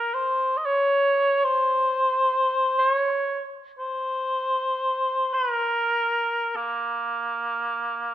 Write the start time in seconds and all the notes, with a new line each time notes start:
Already playing: A#4
0.14 C5
0.57 D#5
0.65 C#5
1.44 C5
2.79 C5
2.91 C#5
3.79 C5
5.33 B4
5.51 A#4
6.56 A#3